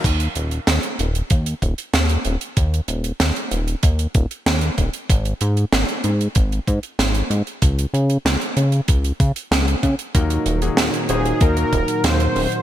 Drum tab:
CC |x---------------|----------------|----------------|----------------|
HH |xxxxxxxxxxxxxxxx|xxxxxxxxxxxxxxxx|xxxxxxxxxxxxxxxx|xxxxxxxxxxxxxxxx|
SD |----o-------o---|----o-------o---|----o-------o---|----o-------o---|
BD |o-------o-o-----|o-------o-o---o-|o-------o-o-----|o-------o-o---o-|

CC |----------------|
HH |xxxxxxxxxxxxxxox|
SD |----o-------o---|
BD |o-------o-o-----|